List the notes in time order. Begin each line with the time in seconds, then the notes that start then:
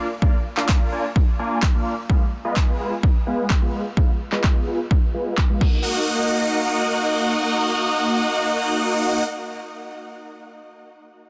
0.22 A#3 D4 F4 D5 F5, kick
0.57 A#3 D4 F4 D5 F5, clap
0.69 kick, clap
0.92 A#3 D4 F4 D5 G#5
1.16 kick
1.39 A#3 D4 F4 D5 G#5
1.63 kick, clap
1.74 A#3 D4 F4 D5 F5
2.10 G#3 B3 F4 B4 F5, kick
2.45 G#3 B3 F4 B4 D#5
2.56 kick, clap
2.80 G#3 B3 F4 B4 G#5
3.03 kick
3.27 G#3 B3 F4 B4 G#5
3.50 kick, clap
3.62 G#3 B3 F4 B4 F5
3.97 G#3 B3 F4 B4 F5, kick
4.32 G#3 B3 F4 B4 D#5, clap
4.44 kick, clap
4.67 G#3 B3 F4 B4 G#5
4.91 kick
5.14 G#3 B3 F4 B4 G#5
5.38 kick, clap
5.49 G#3 B3 F4 B4 F5
5.61 A#3 D#4 F#4 D#5 F#5, kick, crash